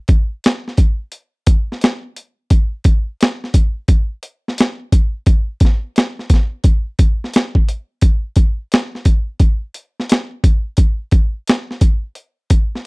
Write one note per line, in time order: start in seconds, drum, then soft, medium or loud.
0.08 kick loud
0.08 closed hi-hat medium
0.44 snare loud
0.44 closed hi-hat medium
0.68 snare soft
0.77 kick medium
0.77 closed hi-hat medium
1.12 closed hi-hat medium
1.47 kick medium
1.47 closed hi-hat medium
1.72 snare soft
1.81 snare loud
1.81 closed hi-hat medium
2.16 closed hi-hat medium
2.50 kick loud
2.50 closed hi-hat medium
2.84 kick loud
2.84 closed hi-hat medium
3.21 snare loud
3.21 closed hi-hat medium
3.44 snare soft
3.54 kick medium
3.54 closed hi-hat medium
3.88 kick medium
3.88 closed hi-hat medium
4.23 closed hi-hat medium
4.48 snare soft
4.58 snare loud
4.58 closed hi-hat medium
4.92 kick loud
4.92 closed hi-hat medium
5.26 kick loud
5.26 closed hi-hat medium
5.60 kick loud
5.60 closed hi-hat medium
5.65 snare soft
5.96 snare loud
5.96 closed hi-hat medium
6.19 snare soft
6.30 kick medium
6.30 closed hi-hat medium
6.34 snare soft
6.64 kick loud
6.64 closed hi-hat medium
6.99 kick medium
6.99 closed hi-hat medium
7.24 snare soft
7.34 snare loud
7.34 closed hi-hat medium
7.55 kick medium
7.69 closed hi-hat medium
8.01 kick medium
8.01 closed hi-hat medium
8.36 kick medium
8.36 closed hi-hat medium
8.72 snare loud
8.72 closed hi-hat medium
8.95 snare soft
9.05 kick medium
9.05 closed hi-hat medium
9.39 kick medium
9.39 closed hi-hat medium
9.74 closed hi-hat medium
10.00 snare soft
10.09 snare loud
10.09 closed hi-hat medium
10.44 kick loud
10.44 closed hi-hat medium
10.77 kick medium
10.77 closed hi-hat medium
11.11 kick medium
11.11 closed hi-hat medium
11.47 snare medium
11.47 closed hi-hat medium
11.71 snare soft
11.81 kick medium
11.81 closed hi-hat medium
12.15 closed hi-hat medium
12.50 kick medium
12.50 closed hi-hat medium
12.75 snare soft